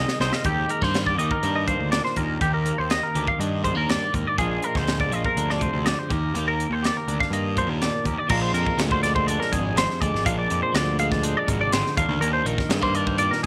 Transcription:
Already playing: clean electric guitar C3 D#3 G#3 C4 G#4 D#5
0.08 snare
0.20 picked electric bass C2, clean electric guitar C3 D#4 C5, snare
0.33 clean electric guitar F4 D#5, snare
0.44 clean electric guitar D#2 G4, picked electric bass D#2, kick, closed hi-hat
0.68 clean electric guitar G#3 A#4, closed hi-hat
0.81 picked electric bass G2, clean electric guitar A#3 C5, kick, snare
0.94 snare, closed hi-hat
1.06 clean electric guitar D5, kick
1.19 picked electric bass D#2, clean electric guitar D#3 G4 D#5, closed hi-hat
1.31 clean electric guitar A#4, kick
1.43 picked electric bass G2, clean electric guitar D4, closed hi-hat
1.56 clean electric guitar D#5
1.68 clean electric guitar A#3 C5, kick, closed hi-hat
1.79 picked electric bass D2
1.92 clean electric guitar A#2 D4 D5, snare, closed hi-hat
2.05 clean electric guitar C5, snare
2.16 picked electric bass D#2, clean electric guitar A#4, kick, closed hi-hat
2.41 picked electric bass D#2, clean electric guitar D#2 G4, kick, closed hi-hat
2.54 clean electric guitar A#4
2.66 clean electric guitar A#3, closed hi-hat
2.78 picked electric bass D#2, clean electric guitar C5
2.90 clean electric guitar D#5, snare, closed hi-hat
3.03 clean electric guitar A#4
3.15 picked electric bass D2, clean electric guitar D#3 G4, closed hi-hat
3.27 clean electric guitar F5, kick
3.39 picked electric bass G2, clean electric guitar D4 D#5, closed hi-hat
3.63 clean electric guitar G#3 C5, kick, closed hi-hat
3.75 picked electric bass D#2, clean electric guitar A#3 A#4
3.88 clean electric guitar G2 D5, snare, closed hi-hat
4.12 picked electric bass D#2, clean electric guitar G#2 A#4, kick, closed hi-hat
4.27 clean electric guitar D5
4.38 picked electric bass A#1, clean electric guitar A#2 F3 G#3 D4 F4 G#4, kick, closed hi-hat
4.62 clean electric guitar G#3 A#4, closed hi-hat
4.75 picked electric bass D2, clean electric guitar C5, kick, snare
4.87 snare, closed hi-hat
5.00 clean electric guitar D5, kick
5.12 picked electric bass A#1, clean electric guitar F3 F4 D#5, closed hi-hat
5.25 clean electric guitar A#4, kick
5.37 picked electric bass D2, clean electric guitar D4, closed hi-hat
5.50 clean electric guitar D5, snare
5.60 clean electric guitar C3 C5, kick, closed hi-hat
5.73 picked electric bass D2
5.85 clean electric guitar D3 D5, snare, closed hi-hat
5.99 clean electric guitar C5
6.09 clean electric guitar D#2 G4 A#4, picked electric bass D#2, kick, closed hi-hat
6.34 picked electric bass D#2, clean electric guitar A#3 G4, closed hi-hat
6.48 clean electric guitar A#4
6.60 closed hi-hat
6.70 picked electric bass D#2, clean electric guitar C5
6.83 clean electric guitar G4 D5, snare, closed hi-hat
6.97 clean electric guitar A#4
7.08 picked electric bass D2, clean electric guitar D4, closed hi-hat
7.21 clean electric guitar F5, kick, snare
7.30 picked electric bass G2, clean electric guitar A#3 D#5, closed hi-hat
7.57 clean electric guitar A#2 D4 C5, kick, closed hi-hat
7.68 picked electric bass D#2, clean electric guitar A#4
7.82 clean electric guitar D5, snare, closed hi-hat
8.04 clean electric guitar D#2 G4 A#4, picked electric bass D#2, kick, closed hi-hat
8.18 clean electric guitar D5
8.28 picked electric bass A#1, clean electric guitar A#2 F3 G#3 D4 F4 A#4, kick, crash
8.42 clean electric guitar C5
8.53 picked electric bass F2, clean electric guitar A#4, closed hi-hat
8.66 kick
8.77 picked electric bass D2, clean electric guitar F3, snare, closed hi-hat
8.91 clean electric guitar C5, kick
9.03 clean electric guitar G#3 D5, snare, closed hi-hat
9.15 clean electric guitar C5, kick
9.27 clean electric guitar D4 D5, closed hi-hat
9.40 clean electric guitar A#4, snare
9.52 picked electric bass G#1, clean electric guitar F2 G#4, kick, closed hi-hat
9.75 picked electric bass G#1, clean electric guitar C5, snare, closed hi-hat
9.91 snare
10.01 picked electric bass D2, clean electric guitar G#3 D5, kick, closed hi-hat
10.13 picked electric bass G#1, snare
10.25 picked electric bass A#1, clean electric guitar A#2 D4 F5, kick, closed hi-hat
10.39 clean electric guitar D5
10.50 picked electric bass F2, closed hi-hat
10.63 clean electric guitar C5
10.73 picked electric bass D2, clean electric guitar F3 D5, snare, closed hi-hat
10.99 clean electric guitar G#3 F5, closed hi-hat
11.12 clean electric guitar D5, kick, snare
11.23 clean electric guitar D4 C5, closed hi-hat
11.37 clean electric guitar D5
11.47 picked electric bass G#1, clean electric guitar C3 A#4, kick, closed hi-hat
11.61 clean electric guitar D5
11.72 picked electric bass G#1, clean electric guitar D3 C5, snare, closed hi-hat
11.87 snare
11.97 clean electric guitar D#2 D4 F5, picked electric bass D#2, kick, closed hi-hat
12.09 picked electric bass D2
12.20 picked electric bass D#2, clean electric guitar A#4, closed hi-hat
12.33 clean electric guitar C5
12.45 picked electric bass A#1, clean electric guitar D#3 A#4, closed hi-hat
12.58 kick, snare
12.69 picked electric bass G2, clean electric guitar G#3, snare, closed hi-hat
12.81 clean electric guitar A#3 C5, kick
12.95 clean electric guitar D4 D5, closed hi-hat
13.07 clean electric guitar C5, kick
13.18 clean electric guitar A#2 D5, closed hi-hat
13.31 clean electric guitar A#4, snare

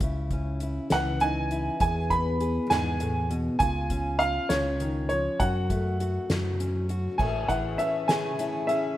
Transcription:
0.01 fingered electric bass C#2, steel-string acoustic guitar C#3 E4, kick, closed hi-hat
0.31 steel-string acoustic guitar C#4, kick, closed hi-hat
0.60 steel-string acoustic guitar E4, closed hi-hat
0.90 fingered electric bass C#2, steel-string acoustic guitar E3, upright piano F#5, snare, closed hi-hat
1.20 steel-string acoustic guitar D#4, upright piano G#5, closed hi-hat
1.51 steel-string acoustic guitar E4, closed hi-hat
1.80 steel-string acoustic guitar E2 G#4, fingered electric bass E2, upright piano G#5, kick, closed hi-hat
2.10 steel-string acoustic guitar B3, upright piano B5, kick, closed hi-hat
2.40 steel-string acoustic guitar G#4, closed hi-hat
2.70 fingered electric bass E2, steel-string acoustic guitar G#2, upright piano G#5, snare, closed hi-hat
3.00 steel-string acoustic guitar A2, closed hi-hat
3.30 steel-string acoustic guitar B2, closed hi-hat
3.59 fingered electric bass C#2, steel-string acoustic guitar C#3 F4, upright piano G#5, kick, closed hi-hat
3.90 steel-string acoustic guitar C#4, kick, closed hi-hat
4.19 steel-string acoustic guitar F4, upright piano F5, closed hi-hat
4.49 fingered electric bass C#2, steel-string acoustic guitar C#3, upright piano C#5, snare, closed hi-hat
4.80 steel-string acoustic guitar D#3, closed hi-hat
5.09 steel-string acoustic guitar F3, upright piano C#5, closed hi-hat
5.40 fingered electric bass F#2, steel-string acoustic guitar F#2 F#4, upright piano F#5, kick, closed hi-hat
5.70 steel-string acoustic guitar A3, kick, closed hi-hat
6.00 steel-string acoustic guitar F#4, closed hi-hat
6.30 fingered electric bass F#2, steel-string acoustic guitar F#3, snare, closed hi-hat
6.60 steel-string acoustic guitar C#4, closed hi-hat
6.89 steel-string acoustic guitar F#4, closed hi-hat
7.18 fingered electric bass A1, steel-string acoustic guitar A2, twelve-string acoustic guitar A3 C#4 E4 G#4, upright piano G#5, kick, crash
7.48 fingered electric bass A1, steel-string acoustic guitar E3, twelve-string acoustic guitar C#4 E4 G#4, upright piano F#5, kick, closed hi-hat
7.78 twelve-string acoustic guitar A3 C#4 E4 G#4, steel-string acoustic guitar C#4, upright piano E5, closed hi-hat
8.08 twelve-string acoustic guitar A3 C#4 E4 G#4, steel-string acoustic guitar G#4, upright piano G#5, snare, closed hi-hat
8.39 twelve-string acoustic guitar A3 C#4 E4 G#4, steel-string acoustic guitar E4, closed hi-hat
8.67 steel-string acoustic guitar C#4, twelve-string acoustic guitar E4 G#4, upright piano E5, closed hi-hat
8.72 twelve-string acoustic guitar C#4

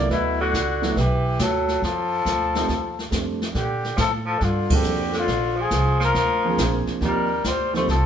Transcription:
Already playing: grand piano F#3 A3 B3 E4, trumpet D5
0.10 upright bass D2, tenor saxophone B2, trumpet E4, brush sweep, kick, snare
0.41 tenor saxophone D3, trumpet F#4
0.53 upright bass C#2, kick, snare, hi-hat pedal
0.81 grand piano F#3 A3 B3 E4, snare
0.96 upright bass B1, tenor saxophone E3, trumpet G4, brush sweep, kick, snare
1.39 upright bass D2, tenor saxophone F#3, trumpet A4, kick, snare, hi-hat pedal
1.68 snare
1.82 upright bass F2, tenor saxophone F3, trumpet A4, brush sweep, kick, snare
2.25 upright bass D2, kick, snare, hi-hat pedal
2.55 grand piano G3 A3 C4 D#4, snare
2.68 upright bass D#2, brush sweep, kick, snare
2.99 snare
3.11 upright bass F2, grand piano G3 A3 C4 D4, kick, snare, hi-hat pedal
3.41 snare
3.53 upright bass A#2, tenor saxophone D3, trumpet G4, brush sweep, kick, snare
3.84 snare
3.96 upright bass A2, tenor saxophone F3, trumpet A4, kick, snare, hi-hat pedal
4.26 tenor saxophone F3, trumpet A4
4.39 upright bass G2, tenor saxophone D3, brush sweep, kick, snare
4.44 trumpet F4
4.68 tenor saxophone D3, grand piano F3 A#3 C4 D4, kick, ride
4.72 trumpet G4, grand piano A4
4.84 upright bass F2, hi-hat pedal
5.13 tenor saxophone D3, snare
5.18 trumpet F4
5.28 upright bass A#1, brush sweep, kick, snare
5.56 tenor saxophone F3
5.61 trumpet G#4
5.71 upright bass C2, kick, snare, hi-hat pedal
6.00 tenor saxophone F3, snare
6.04 trumpet A#4
6.14 upright bass D2, brush sweep, kick, snare
6.44 grand piano F3 A#3 C4 D4 G#4
6.58 upright bass A#1, kick, snare, hi-hat pedal
6.87 muted upright bass stroke, snare
7.01 upright bass D#2, grand piano F3 A#3 C4 D#4 G4, tenor saxophone G3, trumpet A#4, brush sweep, kick, snare
7.44 upright bass D2, tenor saxophone G3, trumpet C5, kick, snare, hi-hat pedal
7.73 grand piano F3 A#3 C4 D#4 G4, tenor saxophone A3, trumpet C5, snare
7.87 upright bass C2, tenor saxophone F3, trumpet A4, brush sweep, kick, snare

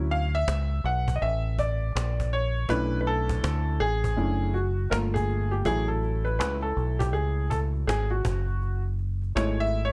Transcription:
Already playing: fingered electric bass D2, upright piano F#3 C#4 E4
0.10 upright piano F5, cajon slap
0.33 upright piano E5, cajon slap
0.47 fingered electric bass C#2, cajon slap
0.70 cajon slap
0.84 fingered electric bass B1, upright piano F#5, cajon slap
1.08 cajon bass
1.16 upright piano D#5
1.21 fingered electric bass A1, upright piano E5, cajon slap
1.44 cajon slap
1.58 upright piano D5, cajon bass
1.81 cajon slap
1.95 fingered electric bass A#1, cajon slap
2.20 cajon bass
2.32 upright piano C#5, cajon slap
2.55 cajon slap
2.69 fingered electric bass B1, upright piano A3 C#4 D4 E4 B4, cajon bass
3.01 upright piano B4
3.07 upright piano A4, cajon slap
3.29 cajon bass
3.43 fingered electric bass D2, cajon slap
3.66 cajon slap
3.80 fingered electric bass A1, upright piano G#4, cajon slap
4.04 cajon bass
4.16 fingered electric bass F#1, upright piano A3 C#4 D4 E4, cajon slap
4.40 cajon slap
4.54 upright piano F#4, cajon slap
4.77 cajon slap
4.90 fingered electric bass G1, upright piano A3 A#3 F4 A#4, cajon slap
5.14 upright piano G#4, cajon bass
5.28 cajon slap
5.51 upright piano G4, cajon slap
5.65 fingered electric bass A1, upright piano F#3 A3 E4 G#4, cajon bass
5.88 upright piano A4
6.03 cajon slap
6.25 upright piano B4, cajon slap
6.39 fingered electric bass C#2, upright piano B4, cajon slap
6.62 upright piano A4, cajon slap
6.77 fingered electric bass B1, cajon slap
6.99 upright piano G4, cajon bass
7.13 fingered electric bass C#2, upright piano G#4, cajon slap
7.37 cajon slap
7.50 upright piano A4, cajon bass
7.74 cajon slap
7.87 fingered electric bass G#1, upright piano G#4, cajon slap
8.10 upright piano F#4, cajon slap
8.25 fingered electric bass F#1, cajon bass
8.48 cajon slap
8.62 cajon slap
8.85 cajon slap
8.99 cajon slap
9.22 cajon slap
9.23 cajon slap
9.35 fingered electric bass G#1, upright piano G#3 A3 E4 C#5, cajon slap
9.59 upright piano E5, cajon slap
9.74 cajon slap
9.85 upright piano C#5

